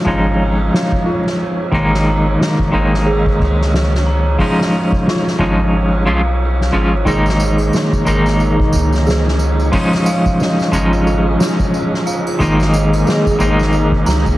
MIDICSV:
0, 0, Header, 1, 7, 480
1, 0, Start_track
1, 0, Tempo, 666667
1, 1246, Time_signature, 4, 2, 24, 8
1, 10351, End_track
2, 0, Start_track
2, 0, Title_t, "Synth texture"
2, 0, Program_c, 0, 99
2, 0, Note_on_c, 0, 73, 79
2, 10351, Note_off_c, 0, 73, 0
2, 10351, End_track
3, 0, Start_track
3, 0, Title_t, "Synth bell"
3, 0, Program_c, 1, 98
3, 0, Control_c, 1, 64, 127
3, 0, Note_on_c, 1, 65, 78
3, 47, Note_on_c, 1, 77, 68
3, 276, Note_off_c, 1, 77, 0
3, 763, Note_off_c, 1, 65, 0
3, 763, Note_on_c, 1, 65, 76
3, 921, Note_off_c, 1, 65, 0
3, 1254, Control_c, 1, 64, 0
3, 1380, Control_c, 1, 64, 127
3, 1484, Note_on_c, 1, 82, 77
3, 1715, Note_off_c, 1, 82, 0
3, 2206, Note_on_c, 1, 68, 76
3, 2362, Note_off_c, 1, 68, 0
3, 2926, Note_on_c, 1, 82, 69
3, 3156, Note_off_c, 1, 82, 0
3, 3174, Control_c, 1, 64, 0
3, 3319, Control_c, 1, 64, 127
3, 3648, Note_on_c, 1, 65, 69
3, 3803, Note_off_c, 1, 65, 0
3, 4369, Note_on_c, 1, 77, 68
3, 4597, Note_off_c, 1, 77, 0
3, 5087, Note_on_c, 1, 68, 72
3, 5093, Control_c, 1, 64, 0
3, 5219, Control_c, 1, 64, 127
3, 5243, Note_off_c, 1, 68, 0
3, 5809, Note_on_c, 1, 82, 66
3, 6037, Note_off_c, 1, 82, 0
3, 6528, Note_on_c, 1, 68, 74
3, 6683, Note_off_c, 1, 68, 0
3, 7014, Control_c, 1, 64, 0
3, 7158, Control_c, 1, 64, 127
3, 7245, Note_on_c, 1, 77, 71
3, 7476, Note_off_c, 1, 77, 0
3, 7964, Note_on_c, 1, 65, 74
3, 8121, Note_off_c, 1, 65, 0
3, 8686, Note_on_c, 1, 77, 72
3, 8916, Note_off_c, 1, 77, 0
3, 8934, Control_c, 1, 64, 0
3, 9041, Control_c, 1, 64, 127
3, 9408, Note_on_c, 1, 68, 71
3, 9563, Note_off_c, 1, 68, 0
3, 10125, Note_on_c, 1, 82, 80
3, 10351, Note_off_c, 1, 82, 0
3, 10351, End_track
4, 0, Start_track
4, 0, Title_t, "String machine"
4, 0, Program_c, 2, 50
4, 5081, Note_on_c, 2, 58, 78
4, 5082, Note_on_c, 2, 63, 79
4, 5082, Note_on_c, 2, 68, 80
4, 5083, Note_on_c, 2, 75, 90
4, 6984, Note_off_c, 2, 58, 0
4, 6985, Note_off_c, 2, 63, 0
4, 6985, Note_off_c, 2, 68, 0
4, 7000, Note_on_c, 2, 61, 85
4, 7000, Note_on_c, 2, 68, 77
4, 7004, Note_on_c, 2, 65, 74
4, 8904, Note_off_c, 2, 61, 0
4, 8905, Note_off_c, 2, 65, 0
4, 8926, Note_on_c, 2, 58, 81
4, 8926, Note_on_c, 2, 63, 80
4, 10351, Note_off_c, 2, 58, 0
4, 10351, Note_off_c, 2, 63, 0
4, 10351, Note_off_c, 2, 68, 0
4, 10351, Note_off_c, 2, 75, 0
4, 10351, End_track
5, 0, Start_track
5, 0, Title_t, "Clean electric guitar"
5, 0, Program_c, 3, 27
5, 34, Note_on_c, 3, 53, 63
5, 42, Note_on_c, 3, 56, 66
5, 48, Note_on_c, 3, 61, 61
5, 56, Note_on_c, 3, 63, 81
5, 1216, Note_off_c, 3, 53, 0
5, 1221, Note_off_c, 3, 56, 0
5, 1224, Note_off_c, 3, 61, 0
5, 1227, Note_off_c, 3, 63, 0
5, 1235, Note_on_c, 3, 51, 78
5, 1241, Note_on_c, 3, 56, 69
5, 1249, Note_on_c, 3, 58, 71
5, 1255, Note_on_c, 3, 63, 81
5, 1937, Note_off_c, 3, 51, 0
5, 1940, Note_off_c, 3, 56, 0
5, 1944, Note_off_c, 3, 58, 0
5, 1947, Note_off_c, 3, 63, 0
5, 1957, Note_on_c, 3, 51, 73
5, 1963, Note_on_c, 3, 56, 60
5, 1969, Note_on_c, 3, 58, 68
5, 1976, Note_on_c, 3, 63, 76
5, 3138, Note_off_c, 3, 51, 0
5, 3141, Note_off_c, 3, 56, 0
5, 3144, Note_off_c, 3, 58, 0
5, 3147, Note_off_c, 3, 63, 0
5, 3157, Note_on_c, 3, 53, 74
5, 3162, Note_on_c, 3, 56, 68
5, 3169, Note_on_c, 3, 61, 69
5, 3177, Note_on_c, 3, 63, 79
5, 3858, Note_off_c, 3, 53, 0
5, 3861, Note_off_c, 3, 56, 0
5, 3864, Note_off_c, 3, 61, 0
5, 3868, Note_off_c, 3, 63, 0
5, 3879, Note_on_c, 3, 53, 69
5, 3883, Note_on_c, 3, 56, 63
5, 3888, Note_on_c, 3, 61, 52
5, 3890, Note_on_c, 3, 63, 72
5, 4343, Note_off_c, 3, 53, 0
5, 4345, Note_off_c, 3, 56, 0
5, 4346, Note_off_c, 3, 61, 0
5, 4349, Note_off_c, 3, 63, 0
5, 4360, Note_on_c, 3, 53, 71
5, 4364, Note_on_c, 3, 56, 71
5, 4367, Note_on_c, 3, 61, 71
5, 4371, Note_on_c, 3, 65, 80
5, 4462, Note_off_c, 3, 53, 0
5, 4465, Note_off_c, 3, 56, 0
5, 4466, Note_off_c, 3, 61, 0
5, 4468, Note_off_c, 3, 65, 0
5, 4841, Note_on_c, 3, 53, 66
5, 4844, Note_on_c, 3, 56, 67
5, 4848, Note_on_c, 3, 61, 64
5, 4854, Note_on_c, 3, 65, 66
5, 4997, Note_off_c, 3, 53, 0
5, 4999, Note_off_c, 3, 56, 0
5, 5001, Note_off_c, 3, 61, 0
5, 5003, Note_off_c, 3, 65, 0
5, 5077, Note_on_c, 3, 51, 78
5, 5085, Note_on_c, 3, 56, 70
5, 5091, Note_on_c, 3, 58, 67
5, 5098, Note_on_c, 3, 63, 85
5, 5778, Note_off_c, 3, 51, 0
5, 5782, Note_off_c, 3, 56, 0
5, 5785, Note_off_c, 3, 58, 0
5, 5788, Note_off_c, 3, 63, 0
5, 5797, Note_on_c, 3, 51, 67
5, 5805, Note_on_c, 3, 56, 62
5, 5810, Note_on_c, 3, 58, 61
5, 5817, Note_on_c, 3, 63, 76
5, 6978, Note_off_c, 3, 51, 0
5, 6982, Note_off_c, 3, 56, 0
5, 6985, Note_off_c, 3, 58, 0
5, 6988, Note_off_c, 3, 63, 0
5, 6996, Note_on_c, 3, 53, 77
5, 7004, Note_on_c, 3, 56, 72
5, 7009, Note_on_c, 3, 61, 69
5, 7016, Note_on_c, 3, 63, 87
5, 7698, Note_off_c, 3, 53, 0
5, 7701, Note_off_c, 3, 56, 0
5, 7704, Note_off_c, 3, 61, 0
5, 7708, Note_off_c, 3, 63, 0
5, 7716, Note_on_c, 3, 53, 73
5, 7724, Note_on_c, 3, 56, 65
5, 7729, Note_on_c, 3, 61, 66
5, 7737, Note_on_c, 3, 63, 74
5, 8898, Note_off_c, 3, 53, 0
5, 8901, Note_off_c, 3, 56, 0
5, 8904, Note_off_c, 3, 61, 0
5, 8908, Note_off_c, 3, 63, 0
5, 8919, Note_on_c, 3, 51, 79
5, 8926, Note_on_c, 3, 56, 73
5, 8932, Note_on_c, 3, 58, 75
5, 8939, Note_on_c, 3, 63, 81
5, 9619, Note_off_c, 3, 51, 0
5, 9622, Note_off_c, 3, 56, 0
5, 9625, Note_off_c, 3, 58, 0
5, 9629, Note_off_c, 3, 63, 0
5, 9638, Note_on_c, 3, 51, 68
5, 9645, Note_on_c, 3, 56, 63
5, 9652, Note_on_c, 3, 58, 66
5, 9658, Note_on_c, 3, 63, 84
5, 10351, Note_off_c, 3, 51, 0
5, 10351, Note_off_c, 3, 56, 0
5, 10351, Note_off_c, 3, 58, 0
5, 10351, Note_off_c, 3, 63, 0
5, 10351, End_track
6, 0, Start_track
6, 0, Title_t, "Sub bass"
6, 0, Program_c, 4, 38
6, 49, Note_on_c, 4, 32, 89
6, 509, Note_off_c, 4, 32, 0
6, 1246, Note_on_c, 4, 32, 94
6, 1707, Note_off_c, 4, 32, 0
6, 1970, Note_on_c, 4, 32, 87
6, 2429, Note_off_c, 4, 32, 0
6, 2450, Note_on_c, 4, 37, 89
6, 3149, Note_off_c, 4, 37, 0
6, 3887, Note_on_c, 4, 32, 92
6, 4372, Note_on_c, 4, 35, 80
6, 4383, Note_off_c, 4, 32, 0
6, 4830, Note_off_c, 4, 35, 0
6, 4851, Note_on_c, 4, 32, 77
6, 5065, Note_off_c, 4, 32, 0
6, 5087, Note_on_c, 4, 32, 104
6, 5548, Note_off_c, 4, 32, 0
6, 5810, Note_on_c, 4, 32, 95
6, 6269, Note_off_c, 4, 32, 0
6, 6294, Note_on_c, 4, 37, 84
6, 6991, Note_off_c, 4, 37, 0
6, 7727, Note_on_c, 4, 32, 92
6, 8188, Note_off_c, 4, 32, 0
6, 8934, Note_on_c, 4, 32, 99
6, 9391, Note_off_c, 4, 32, 0
6, 9650, Note_on_c, 4, 32, 88
6, 10109, Note_off_c, 4, 32, 0
6, 10129, Note_on_c, 4, 37, 91
6, 10351, Note_off_c, 4, 37, 0
6, 10351, End_track
7, 0, Start_track
7, 0, Title_t, "Drums"
7, 44, Note_on_c, 9, 51, 62
7, 47, Note_on_c, 9, 36, 93
7, 116, Note_off_c, 9, 51, 0
7, 119, Note_off_c, 9, 36, 0
7, 191, Note_on_c, 9, 51, 36
7, 263, Note_off_c, 9, 51, 0
7, 284, Note_on_c, 9, 51, 91
7, 356, Note_off_c, 9, 51, 0
7, 430, Note_on_c, 9, 51, 38
7, 502, Note_off_c, 9, 51, 0
7, 523, Note_on_c, 9, 51, 61
7, 535, Note_on_c, 9, 38, 113
7, 595, Note_off_c, 9, 51, 0
7, 607, Note_off_c, 9, 38, 0
7, 665, Note_on_c, 9, 36, 98
7, 737, Note_off_c, 9, 36, 0
7, 762, Note_on_c, 9, 51, 73
7, 834, Note_off_c, 9, 51, 0
7, 910, Note_on_c, 9, 38, 36
7, 982, Note_off_c, 9, 38, 0
7, 997, Note_on_c, 9, 51, 62
7, 1069, Note_off_c, 9, 51, 0
7, 1146, Note_on_c, 9, 51, 37
7, 1218, Note_off_c, 9, 51, 0
7, 1242, Note_on_c, 9, 51, 90
7, 1243, Note_on_c, 9, 36, 106
7, 1314, Note_off_c, 9, 51, 0
7, 1315, Note_off_c, 9, 36, 0
7, 1396, Note_on_c, 9, 38, 46
7, 1468, Note_off_c, 9, 38, 0
7, 1489, Note_on_c, 9, 51, 67
7, 1561, Note_off_c, 9, 51, 0
7, 1724, Note_on_c, 9, 51, 71
7, 1736, Note_on_c, 9, 38, 105
7, 1796, Note_off_c, 9, 51, 0
7, 1808, Note_off_c, 9, 38, 0
7, 1869, Note_on_c, 9, 36, 90
7, 1941, Note_off_c, 9, 36, 0
7, 1964, Note_on_c, 9, 51, 62
7, 2036, Note_off_c, 9, 51, 0
7, 2115, Note_on_c, 9, 38, 36
7, 2187, Note_off_c, 9, 38, 0
7, 2205, Note_on_c, 9, 51, 102
7, 2277, Note_off_c, 9, 51, 0
7, 2350, Note_on_c, 9, 36, 89
7, 2422, Note_off_c, 9, 36, 0
7, 2447, Note_on_c, 9, 36, 92
7, 2449, Note_on_c, 9, 51, 67
7, 2519, Note_off_c, 9, 36, 0
7, 2521, Note_off_c, 9, 51, 0
7, 2600, Note_on_c, 9, 38, 39
7, 2672, Note_off_c, 9, 38, 0
7, 2684, Note_on_c, 9, 51, 76
7, 2695, Note_on_c, 9, 38, 109
7, 2756, Note_off_c, 9, 51, 0
7, 2767, Note_off_c, 9, 38, 0
7, 2839, Note_on_c, 9, 38, 51
7, 2911, Note_off_c, 9, 38, 0
7, 2925, Note_on_c, 9, 51, 64
7, 2997, Note_off_c, 9, 51, 0
7, 3162, Note_on_c, 9, 36, 99
7, 3166, Note_on_c, 9, 46, 72
7, 3234, Note_off_c, 9, 36, 0
7, 3238, Note_off_c, 9, 46, 0
7, 3318, Note_on_c, 9, 38, 48
7, 3390, Note_off_c, 9, 38, 0
7, 3417, Note_on_c, 9, 51, 64
7, 3489, Note_off_c, 9, 51, 0
7, 3546, Note_on_c, 9, 36, 89
7, 3618, Note_off_c, 9, 36, 0
7, 3644, Note_on_c, 9, 51, 76
7, 3655, Note_on_c, 9, 38, 111
7, 3716, Note_off_c, 9, 51, 0
7, 3727, Note_off_c, 9, 38, 0
7, 3796, Note_on_c, 9, 38, 49
7, 3868, Note_off_c, 9, 38, 0
7, 3884, Note_on_c, 9, 36, 79
7, 3884, Note_on_c, 9, 51, 62
7, 3956, Note_off_c, 9, 36, 0
7, 3956, Note_off_c, 9, 51, 0
7, 4029, Note_on_c, 9, 51, 43
7, 4101, Note_off_c, 9, 51, 0
7, 4127, Note_on_c, 9, 51, 95
7, 4199, Note_off_c, 9, 51, 0
7, 4267, Note_on_c, 9, 51, 43
7, 4339, Note_off_c, 9, 51, 0
7, 4604, Note_on_c, 9, 51, 83
7, 4676, Note_off_c, 9, 51, 0
7, 4759, Note_on_c, 9, 38, 34
7, 4831, Note_off_c, 9, 38, 0
7, 4850, Note_on_c, 9, 51, 66
7, 4922, Note_off_c, 9, 51, 0
7, 4989, Note_on_c, 9, 51, 36
7, 5061, Note_off_c, 9, 51, 0
7, 5085, Note_on_c, 9, 36, 108
7, 5086, Note_on_c, 9, 51, 87
7, 5089, Note_on_c, 9, 54, 45
7, 5157, Note_off_c, 9, 36, 0
7, 5158, Note_off_c, 9, 51, 0
7, 5161, Note_off_c, 9, 54, 0
7, 5226, Note_on_c, 9, 54, 35
7, 5246, Note_on_c, 9, 38, 51
7, 5298, Note_off_c, 9, 54, 0
7, 5318, Note_off_c, 9, 38, 0
7, 5326, Note_on_c, 9, 54, 83
7, 5330, Note_on_c, 9, 51, 58
7, 5398, Note_off_c, 9, 54, 0
7, 5402, Note_off_c, 9, 51, 0
7, 5460, Note_on_c, 9, 81, 51
7, 5464, Note_on_c, 9, 54, 34
7, 5532, Note_off_c, 9, 81, 0
7, 5536, Note_off_c, 9, 54, 0
7, 5566, Note_on_c, 9, 54, 51
7, 5570, Note_on_c, 9, 51, 82
7, 5576, Note_on_c, 9, 38, 102
7, 5638, Note_off_c, 9, 54, 0
7, 5642, Note_off_c, 9, 51, 0
7, 5648, Note_off_c, 9, 38, 0
7, 5709, Note_on_c, 9, 36, 79
7, 5711, Note_on_c, 9, 54, 31
7, 5781, Note_off_c, 9, 36, 0
7, 5783, Note_off_c, 9, 54, 0
7, 5804, Note_on_c, 9, 51, 60
7, 5806, Note_on_c, 9, 54, 79
7, 5876, Note_off_c, 9, 51, 0
7, 5878, Note_off_c, 9, 54, 0
7, 5947, Note_on_c, 9, 54, 35
7, 5954, Note_on_c, 9, 38, 34
7, 6019, Note_off_c, 9, 54, 0
7, 6026, Note_off_c, 9, 38, 0
7, 6046, Note_on_c, 9, 51, 82
7, 6047, Note_on_c, 9, 54, 44
7, 6118, Note_off_c, 9, 51, 0
7, 6119, Note_off_c, 9, 54, 0
7, 6191, Note_on_c, 9, 36, 105
7, 6263, Note_off_c, 9, 36, 0
7, 6283, Note_on_c, 9, 54, 81
7, 6284, Note_on_c, 9, 51, 64
7, 6290, Note_on_c, 9, 36, 77
7, 6355, Note_off_c, 9, 54, 0
7, 6356, Note_off_c, 9, 51, 0
7, 6362, Note_off_c, 9, 36, 0
7, 6426, Note_on_c, 9, 54, 35
7, 6438, Note_on_c, 9, 38, 37
7, 6498, Note_off_c, 9, 54, 0
7, 6510, Note_off_c, 9, 38, 0
7, 6525, Note_on_c, 9, 51, 77
7, 6528, Note_on_c, 9, 54, 46
7, 6542, Note_on_c, 9, 38, 97
7, 6597, Note_off_c, 9, 51, 0
7, 6600, Note_off_c, 9, 54, 0
7, 6614, Note_off_c, 9, 38, 0
7, 6681, Note_on_c, 9, 38, 48
7, 6753, Note_off_c, 9, 38, 0
7, 6764, Note_on_c, 9, 54, 81
7, 6768, Note_on_c, 9, 51, 72
7, 6836, Note_off_c, 9, 54, 0
7, 6840, Note_off_c, 9, 51, 0
7, 6909, Note_on_c, 9, 54, 33
7, 6981, Note_off_c, 9, 54, 0
7, 7002, Note_on_c, 9, 46, 81
7, 7003, Note_on_c, 9, 54, 43
7, 7009, Note_on_c, 9, 36, 108
7, 7074, Note_off_c, 9, 46, 0
7, 7075, Note_off_c, 9, 54, 0
7, 7081, Note_off_c, 9, 36, 0
7, 7150, Note_on_c, 9, 54, 30
7, 7158, Note_on_c, 9, 38, 44
7, 7222, Note_off_c, 9, 54, 0
7, 7230, Note_off_c, 9, 38, 0
7, 7243, Note_on_c, 9, 54, 91
7, 7247, Note_on_c, 9, 51, 59
7, 7315, Note_off_c, 9, 54, 0
7, 7319, Note_off_c, 9, 51, 0
7, 7387, Note_on_c, 9, 36, 92
7, 7387, Note_on_c, 9, 54, 39
7, 7459, Note_off_c, 9, 36, 0
7, 7459, Note_off_c, 9, 54, 0
7, 7485, Note_on_c, 9, 51, 76
7, 7487, Note_on_c, 9, 54, 45
7, 7499, Note_on_c, 9, 38, 105
7, 7557, Note_off_c, 9, 51, 0
7, 7559, Note_off_c, 9, 54, 0
7, 7571, Note_off_c, 9, 38, 0
7, 7628, Note_on_c, 9, 54, 30
7, 7636, Note_on_c, 9, 38, 45
7, 7700, Note_off_c, 9, 54, 0
7, 7708, Note_off_c, 9, 38, 0
7, 7725, Note_on_c, 9, 36, 78
7, 7726, Note_on_c, 9, 51, 62
7, 7727, Note_on_c, 9, 54, 92
7, 7797, Note_off_c, 9, 36, 0
7, 7798, Note_off_c, 9, 51, 0
7, 7799, Note_off_c, 9, 54, 0
7, 7869, Note_on_c, 9, 51, 37
7, 7869, Note_on_c, 9, 54, 30
7, 7941, Note_off_c, 9, 51, 0
7, 7941, Note_off_c, 9, 54, 0
7, 7965, Note_on_c, 9, 51, 85
7, 7970, Note_on_c, 9, 54, 43
7, 8037, Note_off_c, 9, 51, 0
7, 8042, Note_off_c, 9, 54, 0
7, 8111, Note_on_c, 9, 51, 42
7, 8183, Note_off_c, 9, 51, 0
7, 8198, Note_on_c, 9, 51, 70
7, 8210, Note_on_c, 9, 54, 85
7, 8213, Note_on_c, 9, 38, 115
7, 8270, Note_off_c, 9, 51, 0
7, 8282, Note_off_c, 9, 54, 0
7, 8285, Note_off_c, 9, 38, 0
7, 8347, Note_on_c, 9, 54, 30
7, 8350, Note_on_c, 9, 36, 98
7, 8419, Note_off_c, 9, 54, 0
7, 8422, Note_off_c, 9, 36, 0
7, 8445, Note_on_c, 9, 51, 77
7, 8452, Note_on_c, 9, 54, 47
7, 8517, Note_off_c, 9, 51, 0
7, 8524, Note_off_c, 9, 54, 0
7, 8596, Note_on_c, 9, 38, 36
7, 8668, Note_off_c, 9, 38, 0
7, 8684, Note_on_c, 9, 51, 62
7, 8689, Note_on_c, 9, 54, 78
7, 8756, Note_off_c, 9, 51, 0
7, 8761, Note_off_c, 9, 54, 0
7, 8823, Note_on_c, 9, 51, 38
7, 8833, Note_on_c, 9, 54, 35
7, 8834, Note_on_c, 9, 81, 70
7, 8895, Note_off_c, 9, 51, 0
7, 8905, Note_off_c, 9, 54, 0
7, 8906, Note_off_c, 9, 81, 0
7, 8927, Note_on_c, 9, 51, 80
7, 8930, Note_on_c, 9, 54, 45
7, 8931, Note_on_c, 9, 36, 100
7, 8999, Note_off_c, 9, 51, 0
7, 9002, Note_off_c, 9, 54, 0
7, 9003, Note_off_c, 9, 36, 0
7, 9070, Note_on_c, 9, 54, 32
7, 9080, Note_on_c, 9, 38, 48
7, 9142, Note_off_c, 9, 54, 0
7, 9152, Note_off_c, 9, 38, 0
7, 9166, Note_on_c, 9, 51, 66
7, 9169, Note_on_c, 9, 54, 89
7, 9238, Note_off_c, 9, 51, 0
7, 9241, Note_off_c, 9, 54, 0
7, 9312, Note_on_c, 9, 81, 59
7, 9314, Note_on_c, 9, 54, 35
7, 9384, Note_off_c, 9, 81, 0
7, 9386, Note_off_c, 9, 54, 0
7, 9408, Note_on_c, 9, 51, 74
7, 9410, Note_on_c, 9, 54, 49
7, 9422, Note_on_c, 9, 38, 97
7, 9480, Note_off_c, 9, 51, 0
7, 9482, Note_off_c, 9, 54, 0
7, 9494, Note_off_c, 9, 38, 0
7, 9553, Note_on_c, 9, 36, 85
7, 9553, Note_on_c, 9, 54, 35
7, 9625, Note_off_c, 9, 36, 0
7, 9625, Note_off_c, 9, 54, 0
7, 9648, Note_on_c, 9, 54, 80
7, 9651, Note_on_c, 9, 51, 65
7, 9720, Note_off_c, 9, 54, 0
7, 9723, Note_off_c, 9, 51, 0
7, 9787, Note_on_c, 9, 54, 30
7, 9801, Note_on_c, 9, 38, 32
7, 9859, Note_off_c, 9, 54, 0
7, 9873, Note_off_c, 9, 38, 0
7, 9882, Note_on_c, 9, 54, 43
7, 9889, Note_on_c, 9, 51, 95
7, 9954, Note_off_c, 9, 54, 0
7, 9961, Note_off_c, 9, 51, 0
7, 10024, Note_on_c, 9, 36, 92
7, 10096, Note_off_c, 9, 36, 0
7, 10125, Note_on_c, 9, 54, 80
7, 10128, Note_on_c, 9, 51, 74
7, 10142, Note_on_c, 9, 38, 107
7, 10197, Note_off_c, 9, 54, 0
7, 10200, Note_off_c, 9, 51, 0
7, 10214, Note_off_c, 9, 38, 0
7, 10267, Note_on_c, 9, 54, 32
7, 10271, Note_on_c, 9, 36, 86
7, 10339, Note_off_c, 9, 54, 0
7, 10343, Note_off_c, 9, 36, 0
7, 10351, End_track
0, 0, End_of_file